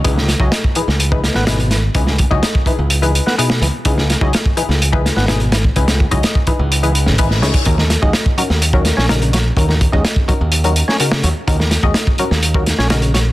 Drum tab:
HH |x-x-x-x-x-x-xxx-|x-x-x-x-xxx-x-x-|x-x-x-x-x-x-xxx-|xx-xx-x-xxx-x-xx|
SD |-oo-o--o--ooo-o-|-o--o------o-o--|-oo-o--o--ooo-o-|-o--o------o-oo-|
BD |o--o-o---o------|o-oo-oo---------|o--o-o---o-----o|o-oo-oo-----o--o|

HH |x-x-x-x-x-x-xxx-|x-x-x-x-xxx-x-x-|x-x-x-x-x-x-xxx-|
SD |-oo-o--o--ooo-o-|-o--o------o-o--|-oo-o--o--ooo-o-|
BD |o--o-o---o------|o-oo-oo---------|o--o-o---o------|